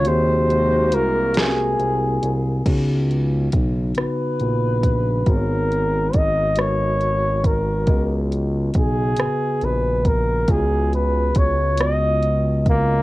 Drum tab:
CC |------|x-----|------|------|
HH |xxxxxx|xxxxxx|xxxxxx|xxxxxx|
SD |---o--|---r--|---r--|---r--|
BD |------|o-o--o|o-o--o|o-o--o|

CC |------|
HH |xxxxxx|
SD |---r--|
BD |o-o--o|